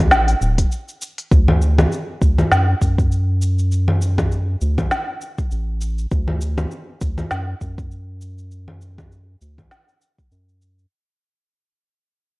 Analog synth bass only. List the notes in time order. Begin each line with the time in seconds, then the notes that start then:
Already playing: D2
0.11 A1
0.41 D1
1.32 D2
2.22 D2
2.52 F#2
2.82 F#2
4.62 D2
5.52 A1
6.12 D2
7.02 D2
7.32 F#2
7.61 F#2
9.42 D2
10.31 F#2